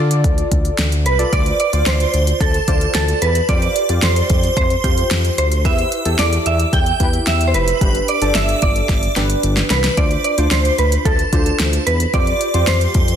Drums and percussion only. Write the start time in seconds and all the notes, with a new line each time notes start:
0.11 closed hi-hat
0.24 kick, closed hi-hat
0.38 closed hi-hat
0.52 kick, closed hi-hat
0.65 closed hi-hat
0.79 snare, closed hi-hat
0.92 closed hi-hat
1.06 closed hi-hat
1.19 closed hi-hat
1.33 kick, closed hi-hat
1.46 closed hi-hat
1.60 closed hi-hat
1.73 closed hi-hat
1.86 snare, closed hi-hat
2.00 closed hi-hat
2.14 closed hi-hat
2.27 closed hi-hat
2.41 kick, closed hi-hat
2.54 closed hi-hat
2.68 kick, closed hi-hat
2.81 closed hi-hat
2.95 snare, closed hi-hat
3.08 closed hi-hat
3.22 closed hi-hat
3.35 closed hi-hat
3.49 kick, closed hi-hat
3.62 closed hi-hat
3.76 closed hi-hat
3.89 closed hi-hat
4.03 snare, closed hi-hat
4.16 closed hi-hat
4.30 kick, closed hi-hat
4.43 closed hi-hat
4.57 kick, closed hi-hat
4.70 closed hi-hat
4.84 kick, closed hi-hat
4.97 closed hi-hat
5.11 snare, closed hi-hat
5.25 closed hi-hat
5.38 closed hi-hat
5.52 closed hi-hat
5.65 kick, closed hi-hat
5.78 closed hi-hat
5.92 closed hi-hat
6.05 closed hi-hat
6.19 snare, closed hi-hat
6.33 closed hi-hat
6.46 closed hi-hat
6.60 closed hi-hat
6.73 kick, closed hi-hat
6.86 closed hi-hat
7.00 kick, closed hi-hat
7.13 closed hi-hat
7.27 snare, closed hi-hat
7.41 closed hi-hat
7.54 closed hi-hat
7.68 closed hi-hat
7.81 kick, closed hi-hat
7.95 closed hi-hat
8.08 closed hi-hat
8.22 closed hi-hat
8.35 snare, closed hi-hat
8.49 closed hi-hat
8.62 kick, closed hi-hat
8.76 closed hi-hat
8.89 kick, snare, closed hi-hat
9.03 closed hi-hat
9.16 snare, closed hi-hat
9.30 closed hi-hat
9.43 closed hi-hat
9.57 snare, closed hi-hat
9.70 snare, closed hi-hat
9.84 snare, closed hi-hat
9.97 kick, closed hi-hat
10.11 closed hi-hat
10.24 closed hi-hat
10.38 closed hi-hat
10.51 snare, closed hi-hat
10.65 closed hi-hat
10.78 closed hi-hat
10.92 closed hi-hat
11.05 kick, closed hi-hat
11.19 closed hi-hat
11.33 kick, closed hi-hat
11.46 closed hi-hat
11.60 snare, closed hi-hat
11.73 closed hi-hat
11.87 closed hi-hat
12.00 closed hi-hat
12.14 kick, closed hi-hat
12.27 closed hi-hat
12.41 closed hi-hat
12.54 closed hi-hat
12.67 snare, closed hi-hat
12.81 closed hi-hat
12.94 kick, closed hi-hat
13.08 closed hi-hat